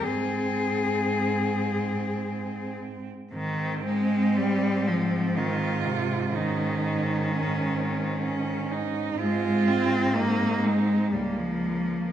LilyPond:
<<
  \new Staff \with { instrumentName = "Cello" } { \time 3/4 \key aes \major \tempo 4 = 60 c'2. | c'2 f'4 | ees'4 des'8 c'8 des'8 ees'8 | f'4 ees'4 bes4 | }
  \new Staff \with { instrumentName = "Cello" } { \time 3/4 \key aes \major aes'2~ aes'8 r8 | c'2. | des'2. | c'2 bes4 | }
  \new Staff \with { instrumentName = "Cello" } { \clef bass \time 3/4 \key aes \major c'2~ c'8 r8 | ees8 aes8 g8 f8 ees8 c8 | ees2~ ees8 r8 | aes8 c'8 bes8 aes8 g16 f8. | }
  \new Staff \with { instrumentName = "Cello" } { \clef bass \time 3/4 \key aes \major aes,2. | aes,2.~ | aes,2. | aes,2 des,4 | }
>>